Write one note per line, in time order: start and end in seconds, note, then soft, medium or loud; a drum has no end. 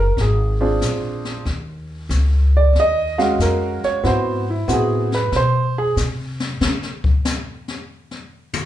0.00 0.16 F#1 medium
0.00 0.18 A#4 medium
0.17 0.80 G#1 medium
0.17 brush sweep soft
0.17 snare soft
0.21 0.60 G#4 medium
0.61 1.42 C4 medium
0.61 1.42 D4 medium
0.61 1.42 F4 medium
0.61 1.42 G#4 medium
0.81 1.44 A#1 medium
0.81 snare medium
0.81 hi-hat pedal medium
1.25 snare soft
1.45 2.08 D#2 medium
1.45 brush sweep soft
1.45 snare soft
2.09 2.72 C#2 medium
2.09 snare medium
2.09 hi-hat pedal soft
2.57 2.76 D5 medium
2.73 3.37 D#2 medium
2.73 brush sweep medium
2.73 snare soft
2.80 3.20 D#5 loud
3.18 3.99 G#3 medium
3.18 4.00 C#4 medium
3.18 4.00 F#4 medium
3.18 3.99 F5 medium
3.18 snare soft
3.39 3.79 F2 medium
3.39 3.83 A#4 medium
3.39 snare medium
3.39 hi-hat pedal medium
3.83 4.04 C#5 medium
3.83 muted upright bass stroke soft
3.83 snare soft
4.03 4.66 G#2 medium
4.03 4.43 B3 medium
4.03 4.43 C4 medium
4.03 4.43 E4 medium
4.03 4.43 F#4 medium
4.03 4.48 C5 medium
4.03 brush sweep medium
4.03 snare soft
4.50 4.67 E4 medium
4.68 5.30 A2 medium
4.68 5.07 B3 medium
4.68 5.07 C4 medium
4.68 5.08 E4 medium
4.68 5.08 F#4 medium
4.68 snare medium
4.68 hi-hat pedal medium
4.73 5.13 G#4 medium
5.12 5.33 B4 medium
5.12 snare soft
5.32 5.95 B2 medium
5.32 brush sweep soft
5.32 snare soft
5.36 5.77 C5 loud
5.78 5.90 G#4 medium
5.96 6.59 C3 medium
5.96 snare medium
5.96 hi-hat pedal medium
6.40 snare medium
6.61 6.82 C#3 medium
6.61 snare loud
6.83 snare soft
7.04 kick medium
7.25 snare medium
7.25 hi-hat pedal medium
7.68 snare soft
8.11 snare soft
8.53 hi-hat pedal medium
8.53 high tom medium